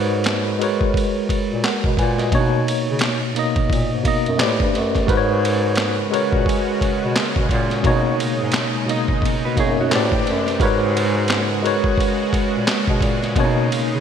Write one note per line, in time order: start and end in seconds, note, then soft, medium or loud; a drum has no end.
0.00 0.77 G#2 loud
0.00 0.51 G#3 loud
0.00 0.52 F#4 loud
0.00 0.52 A#4 loud
0.00 0.53 B4 loud
0.00 0.53 C#5 loud
0.24 snare loud
0.24 clap medium
0.24 ride medium
0.59 1.86 G#3 loud
0.59 1.63 F#4 medium
0.59 1.64 A#4 medium
0.59 1.65 B4 medium
0.59 ride medium
0.63 1.65 C#5 loud
0.81 kick loud
0.94 kick loud
0.94 ride medium
1.29 1.38 A#2 soft
1.29 kick medium
1.29 ride medium
1.52 1.64 A#2 medium
1.64 1.97 A#4 medium
1.64 1.97 F#5 medium
1.64 snare loud
1.64 clap medium
1.64 ride medium
1.84 1.97 B2 medium
1.84 kick loud
1.97 2.30 A#2 loud
1.97 2.18 B4 medium
1.97 2.18 G#5 medium
1.97 kick medium
1.97 ride medium
2.18 2.52 F#4 medium
2.18 2.51 D#5 medium
2.18 snare soft
2.18 ride soft
2.31 3.26 B2 loud
2.31 2.65 B2 loud
2.31 3.27 A#3 loud
2.31 2.41 D4 medium
2.31 3.28 C#5 loud
2.31 kick loud
2.31 ride medium
2.40 3.31 D#4 loud
2.68 ride medium
2.90 3.02 C#3 medium
2.99 snare loud
2.99 clap loud
2.99 ride medium
3.35 3.99 B2 medium
3.35 3.99 A#3 medium
3.35 4.00 D#4 medium
3.35 ride medium
3.39 4.01 D#5 loud
3.56 kick loud
3.56 ride soft
3.70 3.90 A#2 medium
3.70 kick loud
3.70 ride medium
3.93 4.05 G#2 medium
4.03 4.38 B2 loud
4.03 4.39 A#3 medium
4.03 4.40 D#4 medium
4.03 kick medium
4.03 ride medium
4.08 4.41 D#5 loud
4.26 4.39 F#2 medium
4.26 ride soft
4.37 4.59 A2 medium
4.37 5.02 A3 loud
4.37 5.02 G4 medium
4.37 5.02 B4 medium
4.37 5.03 C5 medium
4.37 snare loud
4.37 clap medium
4.37 ride medium
4.42 5.04 D5 loud
4.60 4.73 G2 medium
4.60 kick loud
4.75 5.07 F#2 medium
4.75 snare soft
4.75 ride medium
4.95 kick medium
4.95 snare soft
4.95 ride soft
5.06 6.08 G#2 loud
5.06 9.87 C#3 medium
5.06 6.02 G#3 loud
5.06 9.87 G#3 medium
5.06 7.82 C#4 medium
5.06 6.02 F#4 loud
5.06 7.82 F#4 medium
5.06 6.03 A#4 loud
5.06 6.04 B4 loud
5.06 kick loud
5.06 ride medium
5.10 5.17 C5 loud
5.17 6.08 C#5 loud
5.45 ride medium
5.76 snare loud
5.76 clap medium
5.76 ride medium
6.11 6.22 A#2 soft
6.11 7.38 G#3 medium
6.11 7.38 F#4 medium
6.11 7.39 A#4 medium
6.11 7.39 B4 medium
6.11 ride medium
6.15 7.40 C#5 loud
6.32 6.46 A#2 medium
6.32 kick loud
6.46 kick loud
6.46 ride medium
6.81 6.90 B2 soft
6.81 kick medium
6.81 ride medium
7.04 7.16 B2 loud
7.16 snare loud
7.16 clap medium
7.16 ride medium
7.36 7.49 B2 medium
7.36 kick loud
7.49 7.82 A#2 loud
7.49 kick medium
7.49 ride medium
7.70 snare soft
7.70 ride soft
7.83 8.78 B2 loud
7.83 8.16 B2 loud
7.83 8.79 A#3 loud
7.83 9.89 D#4 medium
7.83 8.80 D#4 loud
7.83 kick loud
7.83 ride medium
7.87 8.80 C#5 loud
8.20 ride medium
8.41 8.53 G#2 medium
8.52 snare loud
8.52 clap loud
8.52 ride medium
8.86 9.50 B2 medium
8.86 9.51 A#3 medium
8.86 9.52 D#4 medium
8.86 ride medium
8.91 9.52 D#5 loud
9.08 kick medium
9.22 kick loud
9.22 ride medium
9.45 9.57 F#4 medium
9.45 9.57 B4 medium
9.55 9.89 F#2 medium
9.55 9.90 B2 medium
9.55 9.91 A#3 medium
9.55 9.92 D#4 medium
9.55 kick medium
9.55 ride medium
9.60 9.78 D#4 medium
9.60 9.78 G#4 medium
9.60 9.93 C#5 loud
9.80 10.12 C#4 medium
9.80 10.12 F#4 medium
9.90 10.24 A2 loud
9.90 10.59 C3 medium
9.90 10.54 A3 medium
9.90 10.59 D4 medium
9.90 10.59 G4 medium
9.90 10.54 G4 medium
9.90 10.55 B4 medium
9.90 10.55 C5 medium
9.90 snare loud
9.90 clap medium
9.90 ride medium
9.95 10.56 D5 loud
10.12 kick loud
10.27 10.58 F#2 loud
10.27 ride soft
10.47 snare soft
10.47 ride soft
10.58 11.81 G#2 loud
10.58 14.00 C#3 medium
10.58 14.00 G#3 medium
10.58 11.55 G#3 loud
10.58 13.32 F#4 medium
10.58 11.55 F#4 loud
10.58 11.55 A#4 loud
10.58 kick loud
10.58 ride medium
10.62 11.56 B4 loud
10.62 11.56 C#5 loud
10.97 ride medium
11.28 snare loud
11.28 clap loud
11.28 ride medium
11.63 12.89 G#3 loud
11.63 12.90 F#4 medium
11.63 12.90 A#4 medium
11.63 12.91 B4 medium
11.63 ride medium
11.67 12.92 C#5 loud
11.84 kick loud
11.98 kick loud
11.98 ride medium
12.33 12.42 A#2 soft
12.33 kick medium
12.33 ride medium
12.55 12.67 A#2 medium
12.67 snare loud
12.67 clap medium
12.67 ride medium
12.88 13.01 B2 loud
12.88 kick loud
13.01 13.33 A#2 medium
13.01 kick medium
13.01 ride medium
13.23 snare soft
13.23 ride soft
13.35 14.00 B2 loud
13.35 13.68 B2 loud
13.35 14.00 A#3 loud
13.35 13.45 C#4 medium
13.35 14.00 D#4 medium
13.35 kick loud
13.35 ride medium
13.40 14.00 C#5 loud
13.45 14.00 D#4 loud
13.72 ride medium
13.93 14.00 C#3 medium